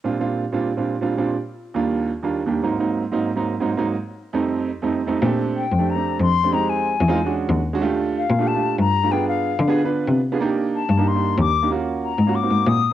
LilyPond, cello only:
\new Staff \with { instrumentName = "Cello" } { \clef bass \time 4/4 \key bes \major \tempo 4 = 185 r1 | r1 | r1 | r1 |
bes,4. f,4. f,4~ | f,4. e,4. ees,4~ | ees,4. bes,4. g,4~ | g,4. d4. c4~ |
c4. g,4. ees,4~ | ees,4. aes,4 aes,8 bes,4 | }